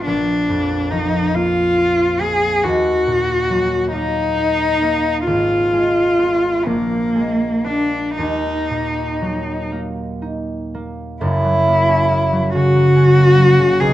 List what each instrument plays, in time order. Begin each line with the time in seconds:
Already playing: harp F3 B3 F4
0.06 harp A#1, cello D4
0.49 harp F2
0.91 harp F3, cello D#4
1.35 harp A#3, cello F4
1.78 harp F4
2.20 harp A#3, cello G#4
2.64 harp D#2, cello F#4
3.07 harp A#2
3.50 harp F#3
3.93 harp A#3, cello D#4
4.37 harp D#4
4.82 harp A#3
5.27 harp G#1, cello F4
5.73 harp G#3
6.19 harp B3 F4
6.66 harp A#1, cello A#3
7.15 harp G#3
7.65 harp A#3 D4, cello D4
8.17 harp D#2, cello D#4
8.70 harp A#2
9.22 harp F#3
9.72 harp A#3
10.22 harp D#4
10.74 harp A#3
11.21 harp F#1 F#2, cello E4
11.45 harp F#3
11.67 harp A#3
11.89 harp C#4
12.11 harp A#3
12.33 harp F#3
12.54 harp C#3, cello F#4
12.76 harp F#3
12.96 harp C#4
13.17 harp A#3
13.38 harp F#3
13.59 harp C#3
13.80 harp B1, cello G#4